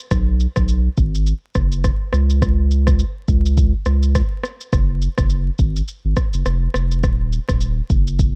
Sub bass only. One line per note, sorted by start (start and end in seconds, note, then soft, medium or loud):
0.11 0.47 B1 loud
0.57 0.89 B1 medium
0.98 1.33 G#1 loud
1.56 1.91 F#1 medium
2.13 3.03 C#2 loud
3.28 3.73 C#2 medium
3.86 4.22 C#2 medium
4.73 5.08 F#1 loud
5.18 5.50 F#1 loud
5.59 5.82 G#1 medium
6.05 6.14 G#1 medium
6.34 6.43 F#1 medium
6.46 6.68 F1 loud
6.75 7.05 F1 medium
7.04 7.39 D#1 loud
7.49 7.81 D#1 loud
7.90 8.35 F#1 medium